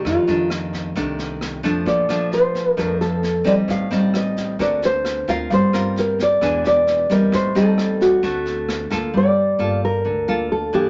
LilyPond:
<<
  \new Staff \with { instrumentName = "Nylon-string guitar" } { \time 4/4 \key g \minor \tempo 4 = 132 f'4 r2. | d''4 c''4 bes'8 a'4 d''8 | f''4 ees''4 d''8 c''4 eis''8 | c''4 bes'8 d''4 d''4 bes'8 |
c''8 a'4 fis'4. r4 | d''4. bes'4. a'8 g'8 | }
  \new Staff \with { instrumentName = "Nylon-string guitar" } { \time 4/4 \key g \minor << { <ees a d'>8 <ees a d'>4. <ees a d'>4. <f a d'>8~ | <f a d'>8 <f a d'>4. <f a d'>4 r8 <g c' ees'>8~ | <g c' ees'>8 <g c' ees'>4. <c' fis' ais'>4. <c' eis' ais'>8~ | <c' eis' ais'>8 <c' f' bes'>4. <b d' gis'>4. <g c' ees'>8~ |
<g c' ees'>8 <g c' ees'>4. <a c' fis'>4. <bes f' a'>8~ | <bes f' a'>8 r8 <bes f' a'>4 r8 <bes f' a'>4 <e bes d'>8 | } \\ { f,2 c2 | bes,2 f,2 | a,2 d2 | g2 e2 |
a,2 d2 | g2 d2 | } >> }
  \new Staff \with { instrumentName = "Upright bass" } { \clef bass \time 4/4 \key g \minor f,16 r16 f,4. c,4. f,8 | bes,,16 r16 bes,,4. f,4. bes,,8 | a,,16 r16 a,,4. d,4. d,8 | g,,16 r16 g,,4. e,,4. e,8 |
a,,16 r16 a,,4. d,4. d,8 | g,,4 g,,4 d,4. g,8 | }
  \new DrumStaff \with { instrumentName = "Drums" } \drummode { \time 4/4 <bd ss sn>8 sn8 <ss sn>8 <bd sn>8 <bd sn>8 sn8 <ss sn>8 <bd sn>8 | <bd sn>8 <ss sn>8 sn8 <bd sn>8 <bd ss sn>8 sn8 sn8 <bd sn>8 | <bd ss sn>8 sn8 <ss sn>8 <bd sn>8 <bd sn>8 sn8 <ss sn>8 <bd sn>8 | <bd sn>8 <ss sn>8 sn8 <bd sn>8 <bd ss sn>8 sn8 sn8 <bd sn>8 |
<bd ss sn>8 sn8 <ss sn>8 <bd sn>8 <bd sn>8 sn8 <ss sn>8 <bd sn>8 | r4 r4 r4 r4 | }
>>